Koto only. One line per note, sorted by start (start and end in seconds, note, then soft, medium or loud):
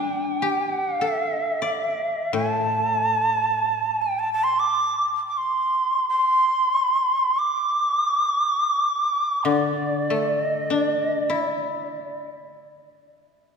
0.00 2.56 G3 soft
0.00 2.22 D4 soft
0.42 2.82 G4 soft
1.01 3.42 A4 soft
1.62 4.02 D5 soft
2.33 5.71 A2 soft
9.45 12.83 D3 soft
10.10 12.52 A3 soft
10.70 13.14 D4 soft
11.30 13.57 E4 soft